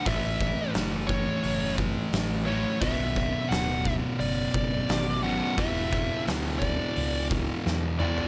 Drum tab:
HH |o---o---o---o---|o---o---o---o---|o---o---o-------|
SD |----o-------o---|----o-------o---|----o-------o---|
T2 |----------------|----------------|--------------o-|
FT |----------------|----------------|---------------o|
BD |o-o---o---o-----|o-o---o---o-----|o-o---o---o-----|